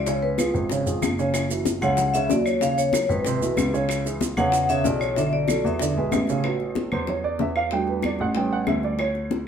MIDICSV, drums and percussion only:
0, 0, Header, 1, 2, 480
1, 0, Start_track
1, 0, Key_signature, 3, "major"
1, 0, Tempo, 318810
1, 101, Time_signature, 4, 2, 24, 8
1, 14269, End_track
2, 0, Start_track
2, 0, Title_t, "Drums"
2, 98, Note_on_c, 9, 60, 70
2, 100, Note_on_c, 9, 63, 35
2, 100, Note_on_c, 9, 70, 67
2, 248, Note_off_c, 9, 60, 0
2, 251, Note_off_c, 9, 63, 0
2, 251, Note_off_c, 9, 70, 0
2, 341, Note_on_c, 9, 60, 34
2, 349, Note_on_c, 9, 63, 33
2, 491, Note_off_c, 9, 60, 0
2, 499, Note_off_c, 9, 63, 0
2, 570, Note_on_c, 9, 60, 57
2, 580, Note_on_c, 9, 63, 103
2, 583, Note_on_c, 9, 75, 61
2, 590, Note_on_c, 9, 70, 76
2, 720, Note_off_c, 9, 60, 0
2, 731, Note_off_c, 9, 63, 0
2, 733, Note_off_c, 9, 75, 0
2, 740, Note_off_c, 9, 70, 0
2, 812, Note_on_c, 9, 60, 36
2, 826, Note_on_c, 9, 63, 38
2, 834, Note_on_c, 9, 70, 27
2, 963, Note_off_c, 9, 60, 0
2, 977, Note_off_c, 9, 63, 0
2, 985, Note_off_c, 9, 70, 0
2, 1047, Note_on_c, 9, 60, 72
2, 1073, Note_on_c, 9, 70, 74
2, 1082, Note_on_c, 9, 63, 33
2, 1198, Note_off_c, 9, 60, 0
2, 1224, Note_off_c, 9, 70, 0
2, 1233, Note_off_c, 9, 63, 0
2, 1307, Note_on_c, 9, 70, 52
2, 1314, Note_on_c, 9, 63, 32
2, 1458, Note_off_c, 9, 70, 0
2, 1465, Note_off_c, 9, 63, 0
2, 1538, Note_on_c, 9, 60, 33
2, 1538, Note_on_c, 9, 61, 80
2, 1544, Note_on_c, 9, 75, 69
2, 1545, Note_on_c, 9, 63, 78
2, 1546, Note_on_c, 9, 70, 66
2, 1689, Note_off_c, 9, 60, 0
2, 1689, Note_off_c, 9, 61, 0
2, 1695, Note_off_c, 9, 75, 0
2, 1696, Note_off_c, 9, 63, 0
2, 1697, Note_off_c, 9, 70, 0
2, 1780, Note_on_c, 9, 60, 29
2, 1795, Note_on_c, 9, 70, 30
2, 1930, Note_off_c, 9, 60, 0
2, 1946, Note_off_c, 9, 70, 0
2, 2014, Note_on_c, 9, 60, 73
2, 2021, Note_on_c, 9, 63, 36
2, 2021, Note_on_c, 9, 75, 69
2, 2023, Note_on_c, 9, 70, 78
2, 2165, Note_off_c, 9, 60, 0
2, 2171, Note_off_c, 9, 75, 0
2, 2172, Note_off_c, 9, 63, 0
2, 2174, Note_off_c, 9, 70, 0
2, 2248, Note_on_c, 9, 60, 37
2, 2263, Note_on_c, 9, 63, 31
2, 2268, Note_on_c, 9, 70, 56
2, 2399, Note_off_c, 9, 60, 0
2, 2414, Note_off_c, 9, 63, 0
2, 2418, Note_off_c, 9, 70, 0
2, 2489, Note_on_c, 9, 60, 55
2, 2494, Note_on_c, 9, 63, 93
2, 2501, Note_on_c, 9, 70, 71
2, 2639, Note_off_c, 9, 60, 0
2, 2645, Note_off_c, 9, 63, 0
2, 2651, Note_off_c, 9, 70, 0
2, 2726, Note_on_c, 9, 60, 36
2, 2743, Note_on_c, 9, 63, 37
2, 2743, Note_on_c, 9, 64, 80
2, 2744, Note_on_c, 9, 75, 64
2, 2746, Note_on_c, 9, 70, 24
2, 2877, Note_off_c, 9, 60, 0
2, 2893, Note_off_c, 9, 63, 0
2, 2893, Note_off_c, 9, 64, 0
2, 2894, Note_off_c, 9, 75, 0
2, 2897, Note_off_c, 9, 70, 0
2, 2967, Note_on_c, 9, 60, 73
2, 2973, Note_on_c, 9, 70, 75
2, 2984, Note_on_c, 9, 63, 34
2, 2984, Note_on_c, 9, 64, 71
2, 3117, Note_off_c, 9, 60, 0
2, 3123, Note_off_c, 9, 70, 0
2, 3135, Note_off_c, 9, 63, 0
2, 3135, Note_off_c, 9, 64, 0
2, 3219, Note_on_c, 9, 63, 32
2, 3227, Note_on_c, 9, 70, 60
2, 3369, Note_off_c, 9, 63, 0
2, 3378, Note_off_c, 9, 70, 0
2, 3454, Note_on_c, 9, 60, 33
2, 3454, Note_on_c, 9, 61, 78
2, 3456, Note_on_c, 9, 63, 34
2, 3469, Note_on_c, 9, 70, 62
2, 3605, Note_off_c, 9, 60, 0
2, 3605, Note_off_c, 9, 61, 0
2, 3606, Note_off_c, 9, 63, 0
2, 3620, Note_off_c, 9, 70, 0
2, 3689, Note_on_c, 9, 63, 31
2, 3697, Note_on_c, 9, 60, 32
2, 3699, Note_on_c, 9, 75, 64
2, 3713, Note_on_c, 9, 70, 32
2, 3839, Note_off_c, 9, 63, 0
2, 3848, Note_off_c, 9, 60, 0
2, 3849, Note_off_c, 9, 75, 0
2, 3863, Note_off_c, 9, 70, 0
2, 3926, Note_on_c, 9, 63, 36
2, 3932, Note_on_c, 9, 60, 76
2, 3950, Note_on_c, 9, 70, 69
2, 4077, Note_off_c, 9, 63, 0
2, 4082, Note_off_c, 9, 60, 0
2, 4101, Note_off_c, 9, 70, 0
2, 4167, Note_on_c, 9, 63, 33
2, 4184, Note_on_c, 9, 60, 33
2, 4190, Note_on_c, 9, 70, 60
2, 4317, Note_off_c, 9, 63, 0
2, 4334, Note_off_c, 9, 60, 0
2, 4340, Note_off_c, 9, 70, 0
2, 4409, Note_on_c, 9, 63, 97
2, 4415, Note_on_c, 9, 60, 66
2, 4423, Note_on_c, 9, 75, 65
2, 4434, Note_on_c, 9, 70, 80
2, 4559, Note_off_c, 9, 63, 0
2, 4566, Note_off_c, 9, 60, 0
2, 4574, Note_off_c, 9, 75, 0
2, 4584, Note_off_c, 9, 70, 0
2, 4659, Note_on_c, 9, 60, 38
2, 4662, Note_on_c, 9, 63, 35
2, 4672, Note_on_c, 9, 70, 25
2, 4809, Note_off_c, 9, 60, 0
2, 4813, Note_off_c, 9, 63, 0
2, 4823, Note_off_c, 9, 70, 0
2, 4887, Note_on_c, 9, 60, 79
2, 4896, Note_on_c, 9, 63, 35
2, 4912, Note_on_c, 9, 70, 70
2, 5038, Note_off_c, 9, 60, 0
2, 5047, Note_off_c, 9, 63, 0
2, 5063, Note_off_c, 9, 70, 0
2, 5141, Note_on_c, 9, 63, 33
2, 5155, Note_on_c, 9, 70, 60
2, 5292, Note_off_c, 9, 63, 0
2, 5305, Note_off_c, 9, 70, 0
2, 5375, Note_on_c, 9, 60, 33
2, 5375, Note_on_c, 9, 61, 71
2, 5376, Note_on_c, 9, 63, 92
2, 5383, Note_on_c, 9, 75, 69
2, 5392, Note_on_c, 9, 70, 72
2, 5525, Note_off_c, 9, 60, 0
2, 5525, Note_off_c, 9, 61, 0
2, 5526, Note_off_c, 9, 63, 0
2, 5534, Note_off_c, 9, 75, 0
2, 5542, Note_off_c, 9, 70, 0
2, 5614, Note_on_c, 9, 60, 29
2, 5615, Note_on_c, 9, 63, 33
2, 5638, Note_on_c, 9, 70, 28
2, 5765, Note_off_c, 9, 60, 0
2, 5765, Note_off_c, 9, 63, 0
2, 5789, Note_off_c, 9, 70, 0
2, 5852, Note_on_c, 9, 63, 39
2, 5854, Note_on_c, 9, 60, 72
2, 5864, Note_on_c, 9, 75, 69
2, 5883, Note_on_c, 9, 70, 67
2, 6002, Note_off_c, 9, 63, 0
2, 6004, Note_off_c, 9, 60, 0
2, 6015, Note_off_c, 9, 75, 0
2, 6034, Note_off_c, 9, 70, 0
2, 6093, Note_on_c, 9, 60, 36
2, 6095, Note_on_c, 9, 63, 36
2, 6120, Note_on_c, 9, 70, 61
2, 6244, Note_off_c, 9, 60, 0
2, 6245, Note_off_c, 9, 63, 0
2, 6271, Note_off_c, 9, 70, 0
2, 6334, Note_on_c, 9, 60, 56
2, 6340, Note_on_c, 9, 63, 99
2, 6358, Note_on_c, 9, 70, 84
2, 6485, Note_off_c, 9, 60, 0
2, 6490, Note_off_c, 9, 63, 0
2, 6509, Note_off_c, 9, 70, 0
2, 6568, Note_on_c, 9, 60, 33
2, 6579, Note_on_c, 9, 75, 60
2, 6580, Note_on_c, 9, 63, 36
2, 6580, Note_on_c, 9, 64, 85
2, 6592, Note_on_c, 9, 70, 24
2, 6718, Note_off_c, 9, 60, 0
2, 6730, Note_off_c, 9, 63, 0
2, 6730, Note_off_c, 9, 64, 0
2, 6730, Note_off_c, 9, 75, 0
2, 6743, Note_off_c, 9, 70, 0
2, 6808, Note_on_c, 9, 60, 75
2, 6826, Note_on_c, 9, 63, 34
2, 6826, Note_on_c, 9, 70, 69
2, 6958, Note_off_c, 9, 60, 0
2, 6976, Note_off_c, 9, 63, 0
2, 6976, Note_off_c, 9, 70, 0
2, 7059, Note_on_c, 9, 63, 32
2, 7066, Note_on_c, 9, 70, 54
2, 7209, Note_off_c, 9, 63, 0
2, 7216, Note_off_c, 9, 70, 0
2, 7292, Note_on_c, 9, 60, 33
2, 7292, Note_on_c, 9, 61, 74
2, 7300, Note_on_c, 9, 63, 35
2, 7308, Note_on_c, 9, 70, 65
2, 7442, Note_off_c, 9, 60, 0
2, 7442, Note_off_c, 9, 61, 0
2, 7451, Note_off_c, 9, 63, 0
2, 7458, Note_off_c, 9, 70, 0
2, 7527, Note_on_c, 9, 60, 36
2, 7532, Note_on_c, 9, 63, 31
2, 7541, Note_on_c, 9, 75, 66
2, 7555, Note_on_c, 9, 70, 28
2, 7677, Note_off_c, 9, 60, 0
2, 7683, Note_off_c, 9, 63, 0
2, 7691, Note_off_c, 9, 75, 0
2, 7705, Note_off_c, 9, 70, 0
2, 7774, Note_on_c, 9, 63, 37
2, 7775, Note_on_c, 9, 60, 72
2, 7794, Note_on_c, 9, 70, 69
2, 7925, Note_off_c, 9, 63, 0
2, 7926, Note_off_c, 9, 60, 0
2, 7944, Note_off_c, 9, 70, 0
2, 8009, Note_on_c, 9, 60, 31
2, 8018, Note_on_c, 9, 63, 36
2, 8160, Note_off_c, 9, 60, 0
2, 8168, Note_off_c, 9, 63, 0
2, 8245, Note_on_c, 9, 60, 57
2, 8254, Note_on_c, 9, 63, 101
2, 8257, Note_on_c, 9, 75, 63
2, 8274, Note_on_c, 9, 70, 80
2, 8396, Note_off_c, 9, 60, 0
2, 8404, Note_off_c, 9, 63, 0
2, 8408, Note_off_c, 9, 75, 0
2, 8425, Note_off_c, 9, 70, 0
2, 8496, Note_on_c, 9, 60, 36
2, 8496, Note_on_c, 9, 63, 38
2, 8524, Note_on_c, 9, 70, 28
2, 8647, Note_off_c, 9, 60, 0
2, 8647, Note_off_c, 9, 63, 0
2, 8674, Note_off_c, 9, 70, 0
2, 8725, Note_on_c, 9, 60, 79
2, 8739, Note_on_c, 9, 63, 33
2, 8761, Note_on_c, 9, 70, 75
2, 8875, Note_off_c, 9, 60, 0
2, 8890, Note_off_c, 9, 63, 0
2, 8911, Note_off_c, 9, 70, 0
2, 8971, Note_on_c, 9, 63, 31
2, 9121, Note_off_c, 9, 63, 0
2, 9208, Note_on_c, 9, 63, 85
2, 9215, Note_on_c, 9, 60, 33
2, 9215, Note_on_c, 9, 61, 82
2, 9217, Note_on_c, 9, 75, 70
2, 9221, Note_on_c, 9, 70, 61
2, 9359, Note_off_c, 9, 63, 0
2, 9365, Note_off_c, 9, 60, 0
2, 9365, Note_off_c, 9, 61, 0
2, 9368, Note_off_c, 9, 75, 0
2, 9371, Note_off_c, 9, 70, 0
2, 9444, Note_on_c, 9, 60, 32
2, 9451, Note_on_c, 9, 63, 31
2, 9471, Note_on_c, 9, 70, 31
2, 9595, Note_off_c, 9, 60, 0
2, 9602, Note_off_c, 9, 63, 0
2, 9621, Note_off_c, 9, 70, 0
2, 9694, Note_on_c, 9, 60, 71
2, 9698, Note_on_c, 9, 63, 37
2, 9699, Note_on_c, 9, 75, 63
2, 9844, Note_off_c, 9, 60, 0
2, 9849, Note_off_c, 9, 63, 0
2, 9850, Note_off_c, 9, 75, 0
2, 9935, Note_on_c, 9, 60, 33
2, 9943, Note_on_c, 9, 63, 33
2, 10085, Note_off_c, 9, 60, 0
2, 10094, Note_off_c, 9, 63, 0
2, 10168, Note_on_c, 9, 60, 58
2, 10180, Note_on_c, 9, 63, 93
2, 10319, Note_off_c, 9, 60, 0
2, 10330, Note_off_c, 9, 63, 0
2, 10413, Note_on_c, 9, 60, 34
2, 10415, Note_on_c, 9, 75, 62
2, 10426, Note_on_c, 9, 63, 35
2, 10426, Note_on_c, 9, 64, 81
2, 10564, Note_off_c, 9, 60, 0
2, 10565, Note_off_c, 9, 75, 0
2, 10576, Note_off_c, 9, 63, 0
2, 10576, Note_off_c, 9, 64, 0
2, 10650, Note_on_c, 9, 60, 63
2, 10663, Note_on_c, 9, 63, 33
2, 10663, Note_on_c, 9, 64, 70
2, 10801, Note_off_c, 9, 60, 0
2, 10814, Note_off_c, 9, 63, 0
2, 10814, Note_off_c, 9, 64, 0
2, 10908, Note_on_c, 9, 63, 31
2, 11059, Note_off_c, 9, 63, 0
2, 11129, Note_on_c, 9, 60, 31
2, 11129, Note_on_c, 9, 61, 73
2, 11142, Note_on_c, 9, 63, 34
2, 11280, Note_off_c, 9, 60, 0
2, 11280, Note_off_c, 9, 61, 0
2, 11293, Note_off_c, 9, 63, 0
2, 11373, Note_on_c, 9, 60, 28
2, 11375, Note_on_c, 9, 63, 27
2, 11377, Note_on_c, 9, 75, 60
2, 11524, Note_off_c, 9, 60, 0
2, 11526, Note_off_c, 9, 63, 0
2, 11528, Note_off_c, 9, 75, 0
2, 11607, Note_on_c, 9, 60, 62
2, 11622, Note_on_c, 9, 63, 34
2, 11757, Note_off_c, 9, 60, 0
2, 11773, Note_off_c, 9, 63, 0
2, 11850, Note_on_c, 9, 60, 34
2, 11860, Note_on_c, 9, 63, 32
2, 12000, Note_off_c, 9, 60, 0
2, 12011, Note_off_c, 9, 63, 0
2, 12082, Note_on_c, 9, 60, 59
2, 12092, Note_on_c, 9, 75, 64
2, 12103, Note_on_c, 9, 63, 87
2, 12232, Note_off_c, 9, 60, 0
2, 12242, Note_off_c, 9, 75, 0
2, 12253, Note_off_c, 9, 63, 0
2, 12326, Note_on_c, 9, 60, 35
2, 12337, Note_on_c, 9, 63, 36
2, 12477, Note_off_c, 9, 60, 0
2, 12488, Note_off_c, 9, 63, 0
2, 12566, Note_on_c, 9, 60, 69
2, 12591, Note_on_c, 9, 63, 31
2, 12717, Note_off_c, 9, 60, 0
2, 12742, Note_off_c, 9, 63, 0
2, 12826, Note_on_c, 9, 63, 30
2, 12976, Note_off_c, 9, 63, 0
2, 13050, Note_on_c, 9, 60, 30
2, 13050, Note_on_c, 9, 61, 67
2, 13052, Note_on_c, 9, 75, 67
2, 13061, Note_on_c, 9, 63, 82
2, 13201, Note_off_c, 9, 60, 0
2, 13201, Note_off_c, 9, 61, 0
2, 13202, Note_off_c, 9, 75, 0
2, 13211, Note_off_c, 9, 63, 0
2, 13296, Note_on_c, 9, 60, 30
2, 13308, Note_on_c, 9, 63, 32
2, 13447, Note_off_c, 9, 60, 0
2, 13458, Note_off_c, 9, 63, 0
2, 13530, Note_on_c, 9, 60, 65
2, 13540, Note_on_c, 9, 75, 67
2, 13545, Note_on_c, 9, 63, 35
2, 13681, Note_off_c, 9, 60, 0
2, 13690, Note_off_c, 9, 75, 0
2, 13696, Note_off_c, 9, 63, 0
2, 13776, Note_on_c, 9, 60, 33
2, 13784, Note_on_c, 9, 63, 33
2, 13927, Note_off_c, 9, 60, 0
2, 13934, Note_off_c, 9, 63, 0
2, 14015, Note_on_c, 9, 63, 93
2, 14017, Note_on_c, 9, 60, 58
2, 14165, Note_off_c, 9, 63, 0
2, 14167, Note_off_c, 9, 60, 0
2, 14269, End_track
0, 0, End_of_file